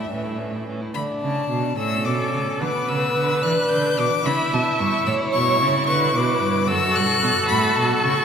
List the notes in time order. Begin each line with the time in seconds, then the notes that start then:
Already playing: E4 E5
0.10 A2 E3 C#4
0.23 A3 E4
0.38 E3 C#4
0.52 A3 E4
0.66 E3 C#4
0.80 A3 E4
0.94 D3 D4 B5
1.22 C#3 A5
1.51 B2
1.77 A2 C#4 A4 E6
2.05 B2 D6
2.34 C#3
2.60 D3 B3 B4 D6
2.88 C#3 E6
3.16 D3
3.42 E3 D4 F#6
3.70 D3 G6
3.98 B2 D6
4.25 C#3 E4 E5 B5
4.53 B2 A5
4.80 G2 C#6
5.06 A2 C#5 E6
5.33 B2 C#6
5.61 C#3
5.87 D3 B4 C#6
6.15 B2 D6
6.42 G2
6.68 F#2 F#4 A4 E6
6.96 G2 F#6
7.23 B2
7.49 A2 F#4 B5
7.76 B2 A5
8.02 C#3 C#6